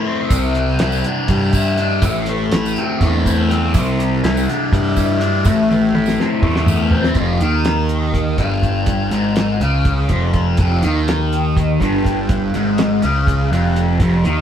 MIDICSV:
0, 0, Header, 1, 4, 480
1, 0, Start_track
1, 0, Tempo, 488599
1, 309, Time_signature, 7, 3, 24, 8
1, 14156, End_track
2, 0, Start_track
2, 0, Title_t, "Distorted electric guitar"
2, 0, Program_c, 0, 30
2, 0, Note_on_c, 0, 57, 72
2, 0, Note_on_c, 0, 64, 71
2, 60, Note_on_c, 0, 60, 71
2, 303, Note_off_c, 0, 57, 0
2, 313, Note_on_c, 0, 48, 69
2, 559, Note_on_c, 0, 55, 68
2, 801, Note_off_c, 0, 64, 0
2, 805, Note_on_c, 0, 64, 78
2, 1035, Note_off_c, 0, 60, 0
2, 1039, Note_on_c, 0, 62, 68
2, 1276, Note_off_c, 0, 55, 0
2, 1288, Note_on_c, 0, 55, 67
2, 1516, Note_off_c, 0, 48, 0
2, 1516, Note_off_c, 0, 64, 0
2, 1520, Note_on_c, 0, 64, 73
2, 1746, Note_off_c, 0, 62, 0
2, 1757, Note_on_c, 0, 62, 70
2, 1990, Note_on_c, 0, 45, 69
2, 1997, Note_off_c, 0, 62, 0
2, 2004, Note_off_c, 0, 55, 0
2, 2235, Note_on_c, 0, 57, 70
2, 2481, Note_off_c, 0, 64, 0
2, 2485, Note_on_c, 0, 64, 72
2, 2729, Note_on_c, 0, 60, 66
2, 2961, Note_off_c, 0, 57, 0
2, 2973, Note_on_c, 0, 57, 71
2, 3197, Note_off_c, 0, 45, 0
2, 3216, Note_off_c, 0, 64, 0
2, 3220, Note_on_c, 0, 64, 68
2, 3436, Note_off_c, 0, 60, 0
2, 3440, Note_on_c, 0, 60, 69
2, 3679, Note_on_c, 0, 48, 74
2, 3689, Note_off_c, 0, 57, 0
2, 3918, Note_on_c, 0, 55, 67
2, 4157, Note_off_c, 0, 64, 0
2, 4161, Note_on_c, 0, 64, 80
2, 4408, Note_off_c, 0, 60, 0
2, 4412, Note_on_c, 0, 62, 73
2, 4633, Note_off_c, 0, 55, 0
2, 4644, Note_on_c, 0, 55, 72
2, 4858, Note_off_c, 0, 64, 0
2, 4870, Note_on_c, 0, 64, 70
2, 4884, Note_off_c, 0, 48, 0
2, 5098, Note_off_c, 0, 62, 0
2, 5110, Note_on_c, 0, 62, 68
2, 5358, Note_on_c, 0, 45, 67
2, 5359, Note_off_c, 0, 62, 0
2, 5359, Note_off_c, 0, 64, 0
2, 5366, Note_off_c, 0, 55, 0
2, 5595, Note_on_c, 0, 57, 64
2, 5842, Note_on_c, 0, 64, 82
2, 6081, Note_on_c, 0, 60, 64
2, 6305, Note_off_c, 0, 57, 0
2, 6317, Note_on_c, 0, 57, 68
2, 6556, Note_off_c, 0, 64, 0
2, 6564, Note_off_c, 0, 45, 0
2, 6568, Note_on_c, 0, 64, 65
2, 6785, Note_off_c, 0, 60, 0
2, 6797, Note_on_c, 0, 60, 70
2, 7043, Note_off_c, 0, 60, 0
2, 7044, Note_off_c, 0, 57, 0
2, 7049, Note_off_c, 0, 64, 0
2, 7050, Note_on_c, 0, 41, 94
2, 7283, Note_off_c, 0, 41, 0
2, 7284, Note_on_c, 0, 51, 88
2, 8230, Note_on_c, 0, 43, 90
2, 8240, Note_off_c, 0, 51, 0
2, 8947, Note_off_c, 0, 43, 0
2, 8951, Note_on_c, 0, 44, 93
2, 9434, Note_off_c, 0, 44, 0
2, 9445, Note_on_c, 0, 49, 103
2, 9920, Note_off_c, 0, 49, 0
2, 9927, Note_on_c, 0, 41, 97
2, 10400, Note_off_c, 0, 41, 0
2, 10412, Note_on_c, 0, 41, 103
2, 10641, Note_on_c, 0, 51, 98
2, 10643, Note_off_c, 0, 41, 0
2, 11595, Note_off_c, 0, 51, 0
2, 11599, Note_on_c, 0, 43, 100
2, 12313, Note_off_c, 0, 43, 0
2, 12324, Note_on_c, 0, 44, 100
2, 12790, Note_on_c, 0, 49, 102
2, 12794, Note_off_c, 0, 44, 0
2, 13266, Note_off_c, 0, 49, 0
2, 13270, Note_on_c, 0, 41, 93
2, 13744, Note_off_c, 0, 41, 0
2, 13763, Note_on_c, 0, 41, 91
2, 13991, Note_off_c, 0, 41, 0
2, 14000, Note_on_c, 0, 51, 93
2, 14156, Note_off_c, 0, 51, 0
2, 14156, End_track
3, 0, Start_track
3, 0, Title_t, "Picked electric bass"
3, 0, Program_c, 1, 34
3, 299, Note_on_c, 1, 36, 103
3, 747, Note_off_c, 1, 36, 0
3, 789, Note_on_c, 1, 36, 85
3, 1009, Note_off_c, 1, 36, 0
3, 1261, Note_on_c, 1, 43, 93
3, 1987, Note_on_c, 1, 33, 102
3, 2002, Note_off_c, 1, 43, 0
3, 2434, Note_off_c, 1, 33, 0
3, 2485, Note_on_c, 1, 33, 84
3, 2701, Note_off_c, 1, 33, 0
3, 2961, Note_on_c, 1, 40, 104
3, 3681, Note_on_c, 1, 36, 110
3, 3695, Note_off_c, 1, 40, 0
3, 4123, Note_off_c, 1, 36, 0
3, 4164, Note_on_c, 1, 36, 88
3, 4382, Note_off_c, 1, 36, 0
3, 4642, Note_on_c, 1, 43, 97
3, 5358, Note_on_c, 1, 33, 108
3, 5372, Note_off_c, 1, 43, 0
3, 5804, Note_off_c, 1, 33, 0
3, 5830, Note_on_c, 1, 33, 78
3, 6056, Note_off_c, 1, 33, 0
3, 6311, Note_on_c, 1, 40, 94
3, 7001, Note_off_c, 1, 40, 0
3, 7029, Note_on_c, 1, 29, 89
3, 7262, Note_off_c, 1, 29, 0
3, 7275, Note_on_c, 1, 39, 90
3, 8204, Note_off_c, 1, 39, 0
3, 8231, Note_on_c, 1, 31, 88
3, 8921, Note_off_c, 1, 31, 0
3, 8955, Note_on_c, 1, 32, 82
3, 9409, Note_off_c, 1, 32, 0
3, 9436, Note_on_c, 1, 37, 89
3, 9889, Note_off_c, 1, 37, 0
3, 9918, Note_on_c, 1, 29, 83
3, 10369, Note_off_c, 1, 29, 0
3, 10405, Note_on_c, 1, 29, 94
3, 10629, Note_off_c, 1, 29, 0
3, 10638, Note_on_c, 1, 39, 89
3, 11561, Note_off_c, 1, 39, 0
3, 11597, Note_on_c, 1, 31, 86
3, 12280, Note_off_c, 1, 31, 0
3, 12322, Note_on_c, 1, 32, 84
3, 12767, Note_off_c, 1, 32, 0
3, 12808, Note_on_c, 1, 37, 80
3, 13249, Note_off_c, 1, 37, 0
3, 13279, Note_on_c, 1, 29, 83
3, 13723, Note_off_c, 1, 29, 0
3, 13751, Note_on_c, 1, 29, 95
3, 13975, Note_off_c, 1, 29, 0
3, 13994, Note_on_c, 1, 39, 85
3, 14156, Note_off_c, 1, 39, 0
3, 14156, End_track
4, 0, Start_track
4, 0, Title_t, "Drums"
4, 299, Note_on_c, 9, 42, 96
4, 300, Note_on_c, 9, 54, 99
4, 301, Note_on_c, 9, 36, 101
4, 397, Note_off_c, 9, 42, 0
4, 398, Note_off_c, 9, 54, 0
4, 399, Note_off_c, 9, 36, 0
4, 540, Note_on_c, 9, 42, 73
4, 638, Note_off_c, 9, 42, 0
4, 775, Note_on_c, 9, 42, 99
4, 785, Note_on_c, 9, 38, 110
4, 873, Note_off_c, 9, 42, 0
4, 883, Note_off_c, 9, 38, 0
4, 904, Note_on_c, 9, 54, 65
4, 1002, Note_off_c, 9, 54, 0
4, 1024, Note_on_c, 9, 42, 68
4, 1122, Note_off_c, 9, 42, 0
4, 1260, Note_on_c, 9, 42, 86
4, 1265, Note_on_c, 9, 36, 96
4, 1358, Note_off_c, 9, 42, 0
4, 1364, Note_off_c, 9, 36, 0
4, 1500, Note_on_c, 9, 42, 68
4, 1506, Note_on_c, 9, 36, 84
4, 1514, Note_on_c, 9, 54, 97
4, 1598, Note_off_c, 9, 42, 0
4, 1604, Note_off_c, 9, 36, 0
4, 1612, Note_off_c, 9, 54, 0
4, 1744, Note_on_c, 9, 42, 78
4, 1842, Note_off_c, 9, 42, 0
4, 1983, Note_on_c, 9, 42, 92
4, 1988, Note_on_c, 9, 36, 114
4, 1988, Note_on_c, 9, 54, 97
4, 2081, Note_off_c, 9, 42, 0
4, 2086, Note_off_c, 9, 36, 0
4, 2086, Note_off_c, 9, 54, 0
4, 2131, Note_on_c, 9, 54, 30
4, 2221, Note_on_c, 9, 42, 74
4, 2229, Note_off_c, 9, 54, 0
4, 2320, Note_off_c, 9, 42, 0
4, 2471, Note_on_c, 9, 42, 95
4, 2480, Note_on_c, 9, 38, 107
4, 2569, Note_off_c, 9, 42, 0
4, 2579, Note_off_c, 9, 38, 0
4, 2610, Note_on_c, 9, 54, 77
4, 2709, Note_off_c, 9, 54, 0
4, 2717, Note_on_c, 9, 42, 60
4, 2815, Note_off_c, 9, 42, 0
4, 2955, Note_on_c, 9, 36, 95
4, 2955, Note_on_c, 9, 42, 83
4, 3053, Note_off_c, 9, 36, 0
4, 3054, Note_off_c, 9, 42, 0
4, 3199, Note_on_c, 9, 36, 77
4, 3203, Note_on_c, 9, 42, 72
4, 3212, Note_on_c, 9, 54, 95
4, 3298, Note_off_c, 9, 36, 0
4, 3301, Note_off_c, 9, 42, 0
4, 3310, Note_off_c, 9, 54, 0
4, 3449, Note_on_c, 9, 42, 65
4, 3458, Note_on_c, 9, 38, 37
4, 3547, Note_off_c, 9, 42, 0
4, 3557, Note_off_c, 9, 38, 0
4, 3675, Note_on_c, 9, 54, 98
4, 3680, Note_on_c, 9, 42, 89
4, 3682, Note_on_c, 9, 36, 112
4, 3773, Note_off_c, 9, 54, 0
4, 3778, Note_off_c, 9, 42, 0
4, 3780, Note_off_c, 9, 36, 0
4, 3814, Note_on_c, 9, 54, 26
4, 3912, Note_off_c, 9, 54, 0
4, 3929, Note_on_c, 9, 42, 70
4, 4027, Note_off_c, 9, 42, 0
4, 4166, Note_on_c, 9, 42, 85
4, 4176, Note_on_c, 9, 38, 98
4, 4264, Note_off_c, 9, 42, 0
4, 4274, Note_off_c, 9, 38, 0
4, 4293, Note_on_c, 9, 54, 71
4, 4391, Note_off_c, 9, 54, 0
4, 4415, Note_on_c, 9, 42, 63
4, 4425, Note_on_c, 9, 38, 32
4, 4514, Note_off_c, 9, 42, 0
4, 4523, Note_off_c, 9, 38, 0
4, 4643, Note_on_c, 9, 36, 105
4, 4650, Note_on_c, 9, 42, 85
4, 4741, Note_off_c, 9, 36, 0
4, 4748, Note_off_c, 9, 42, 0
4, 4878, Note_on_c, 9, 54, 84
4, 4882, Note_on_c, 9, 36, 78
4, 4887, Note_on_c, 9, 42, 75
4, 4976, Note_off_c, 9, 54, 0
4, 4981, Note_off_c, 9, 36, 0
4, 4985, Note_off_c, 9, 42, 0
4, 5118, Note_on_c, 9, 42, 79
4, 5217, Note_off_c, 9, 42, 0
4, 5350, Note_on_c, 9, 54, 90
4, 5359, Note_on_c, 9, 42, 102
4, 5360, Note_on_c, 9, 36, 111
4, 5449, Note_off_c, 9, 54, 0
4, 5458, Note_off_c, 9, 36, 0
4, 5458, Note_off_c, 9, 42, 0
4, 5613, Note_on_c, 9, 54, 28
4, 5614, Note_on_c, 9, 48, 64
4, 5711, Note_off_c, 9, 54, 0
4, 5712, Note_off_c, 9, 48, 0
4, 5847, Note_on_c, 9, 48, 70
4, 5945, Note_off_c, 9, 48, 0
4, 5953, Note_on_c, 9, 54, 66
4, 5973, Note_on_c, 9, 38, 67
4, 6051, Note_off_c, 9, 54, 0
4, 6072, Note_off_c, 9, 38, 0
4, 6092, Note_on_c, 9, 38, 73
4, 6190, Note_off_c, 9, 38, 0
4, 6314, Note_on_c, 9, 36, 92
4, 6412, Note_off_c, 9, 36, 0
4, 6443, Note_on_c, 9, 38, 76
4, 6541, Note_off_c, 9, 38, 0
4, 6547, Note_on_c, 9, 45, 92
4, 6563, Note_on_c, 9, 54, 90
4, 6645, Note_off_c, 9, 45, 0
4, 6661, Note_off_c, 9, 54, 0
4, 6784, Note_on_c, 9, 43, 101
4, 6882, Note_off_c, 9, 43, 0
4, 6915, Note_on_c, 9, 54, 22
4, 6918, Note_on_c, 9, 38, 87
4, 7013, Note_off_c, 9, 54, 0
4, 7017, Note_off_c, 9, 38, 0
4, 7022, Note_on_c, 9, 42, 82
4, 7029, Note_on_c, 9, 36, 105
4, 7120, Note_off_c, 9, 42, 0
4, 7127, Note_off_c, 9, 36, 0
4, 7275, Note_on_c, 9, 42, 69
4, 7373, Note_off_c, 9, 42, 0
4, 7512, Note_on_c, 9, 42, 84
4, 7521, Note_on_c, 9, 38, 100
4, 7610, Note_off_c, 9, 42, 0
4, 7620, Note_off_c, 9, 38, 0
4, 7751, Note_on_c, 9, 42, 58
4, 7849, Note_off_c, 9, 42, 0
4, 7996, Note_on_c, 9, 36, 90
4, 8001, Note_on_c, 9, 42, 81
4, 8094, Note_off_c, 9, 36, 0
4, 8099, Note_off_c, 9, 42, 0
4, 8233, Note_on_c, 9, 42, 68
4, 8235, Note_on_c, 9, 36, 79
4, 8332, Note_off_c, 9, 42, 0
4, 8334, Note_off_c, 9, 36, 0
4, 8476, Note_on_c, 9, 36, 74
4, 8479, Note_on_c, 9, 42, 73
4, 8574, Note_off_c, 9, 36, 0
4, 8578, Note_off_c, 9, 42, 0
4, 8708, Note_on_c, 9, 42, 97
4, 8714, Note_on_c, 9, 36, 106
4, 8806, Note_off_c, 9, 42, 0
4, 8812, Note_off_c, 9, 36, 0
4, 8953, Note_on_c, 9, 42, 72
4, 9051, Note_off_c, 9, 42, 0
4, 9193, Note_on_c, 9, 42, 90
4, 9203, Note_on_c, 9, 38, 104
4, 9291, Note_off_c, 9, 42, 0
4, 9301, Note_off_c, 9, 38, 0
4, 9442, Note_on_c, 9, 42, 65
4, 9541, Note_off_c, 9, 42, 0
4, 9678, Note_on_c, 9, 42, 87
4, 9680, Note_on_c, 9, 36, 94
4, 9776, Note_off_c, 9, 42, 0
4, 9778, Note_off_c, 9, 36, 0
4, 9912, Note_on_c, 9, 42, 70
4, 9919, Note_on_c, 9, 36, 76
4, 10010, Note_off_c, 9, 42, 0
4, 10017, Note_off_c, 9, 36, 0
4, 10153, Note_on_c, 9, 42, 72
4, 10157, Note_on_c, 9, 36, 79
4, 10252, Note_off_c, 9, 42, 0
4, 10256, Note_off_c, 9, 36, 0
4, 10387, Note_on_c, 9, 42, 89
4, 10399, Note_on_c, 9, 36, 110
4, 10486, Note_off_c, 9, 42, 0
4, 10497, Note_off_c, 9, 36, 0
4, 10635, Note_on_c, 9, 42, 66
4, 10733, Note_off_c, 9, 42, 0
4, 10884, Note_on_c, 9, 42, 85
4, 10893, Note_on_c, 9, 38, 99
4, 10982, Note_off_c, 9, 42, 0
4, 10992, Note_off_c, 9, 38, 0
4, 11127, Note_on_c, 9, 42, 56
4, 11225, Note_off_c, 9, 42, 0
4, 11363, Note_on_c, 9, 36, 98
4, 11369, Note_on_c, 9, 42, 76
4, 11462, Note_off_c, 9, 36, 0
4, 11468, Note_off_c, 9, 42, 0
4, 11603, Note_on_c, 9, 36, 75
4, 11610, Note_on_c, 9, 42, 62
4, 11701, Note_off_c, 9, 36, 0
4, 11708, Note_off_c, 9, 42, 0
4, 11842, Note_on_c, 9, 36, 76
4, 11850, Note_on_c, 9, 42, 67
4, 11940, Note_off_c, 9, 36, 0
4, 11948, Note_off_c, 9, 42, 0
4, 12074, Note_on_c, 9, 42, 90
4, 12078, Note_on_c, 9, 36, 120
4, 12173, Note_off_c, 9, 42, 0
4, 12176, Note_off_c, 9, 36, 0
4, 12320, Note_on_c, 9, 42, 70
4, 12418, Note_off_c, 9, 42, 0
4, 12556, Note_on_c, 9, 42, 90
4, 12566, Note_on_c, 9, 38, 106
4, 12654, Note_off_c, 9, 42, 0
4, 12664, Note_off_c, 9, 38, 0
4, 12795, Note_on_c, 9, 42, 69
4, 12893, Note_off_c, 9, 42, 0
4, 13040, Note_on_c, 9, 36, 105
4, 13048, Note_on_c, 9, 42, 84
4, 13138, Note_off_c, 9, 36, 0
4, 13146, Note_off_c, 9, 42, 0
4, 13290, Note_on_c, 9, 42, 73
4, 13388, Note_off_c, 9, 42, 0
4, 13520, Note_on_c, 9, 42, 75
4, 13618, Note_off_c, 9, 42, 0
4, 13754, Note_on_c, 9, 36, 116
4, 13754, Note_on_c, 9, 42, 95
4, 13852, Note_off_c, 9, 36, 0
4, 13852, Note_off_c, 9, 42, 0
4, 13998, Note_on_c, 9, 42, 70
4, 14096, Note_off_c, 9, 42, 0
4, 14156, End_track
0, 0, End_of_file